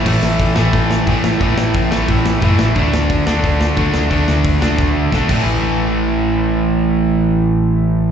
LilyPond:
<<
  \new Staff \with { instrumentName = "Overdriven electric guitar" } { \clef bass \time 4/4 \key d \lydian \tempo 4 = 178 <a, e a>4. <a, e a>4. <a, e a>4 | <a, e a>4. <a, e a>4. <a, e a>4 | <d a d'>4. <d a d'>4. <d a d'>4 | <d a d'>4. <d a d'>4. <d a d'>8 <a, e a>8~ |
<a, e a>1~ | <a, e a>1 | }
  \new Staff \with { instrumentName = "Picked electric bass" } { \clef bass \time 4/4 \key d \lydian a,,8 a,,8 a,,8 a,,8 a,,4 a,,8 a,,8 | a,,8 a,,8 a,,8 a,,8 a,,8 a,,8 fis,,8 a,,8 | d,8 d,8 d,8 d,8 d,4 d,8 d,8 | d,8 d,8 d,8 d,8 d,8 d,8 b,,8 a,,8~ |
a,,1~ | a,,1 | }
  \new DrumStaff \with { instrumentName = "Drums" } \drummode { \time 4/4 <cymc bd>8 sn8 <hho bd>8 sn8 <hho bd>8 sn8 <hho bd>8 sn8 | <hho bd>8 sn8 <hho bd>8 sn8 <hho bd>8 sn8 <hho bd>8 sn8 | <hho bd>8 sn8 <hho bd>8 sn8 <hho bd>8 sn8 <hho bd>8 sn8 | <hho bd>8 sn8 <hho bd>8 sn8 <bd sn>4 <bd sn>8 <cymc bd>8 |
r4 r4 r4 r4 | r4 r4 r4 r4 | }
>>